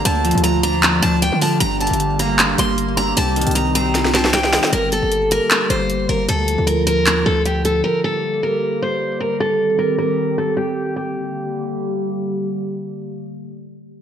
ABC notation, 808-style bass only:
X:1
M:4/4
L:1/16
Q:1/4=154
K:Gm
V:1 name="808-style bass" clef=bass
D,,3 D,,4 E,,3 D,,3 D,3 | G,,,3 G,,,6- G,,, G,,,6 | C,,3 C,,12 z | G,,,3 G,,,4 z3 G,,,4 G,,,2 |
D,,3 D,,4 E,,3 D,,6 | z16 | z16 | z16 |
z16 |]